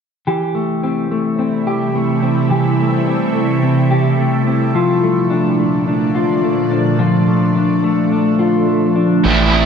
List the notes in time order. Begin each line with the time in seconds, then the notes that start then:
0.27 C3 E3 G3 A3 E4 G4
0.55 A3
0.83 C4
1.11 A3
1.39 C4
1.67 G4
1.95 A3
2.23 C4
2.50 E3 G4
2.79 A3
3.07 C4
3.35 A3
3.63 C4
3.91 G4
4.19 A3
4.47 C4
4.75 A#2 D3 F3 D4 F4
5.04 A3
5.30 D4
5.59 A3
5.87 D4
6.15 F4
6.43 A3
6.71 D4
6.99 F3 A3 F4
7.28 A3
7.56 D4
7.84 A3
8.12 D4
8.39 F4
8.67 A3
8.95 D4
9.24 A1 A2 E3 G3 C4 E4 A4 C5 G5
9.52 C4 E4
9.57 G3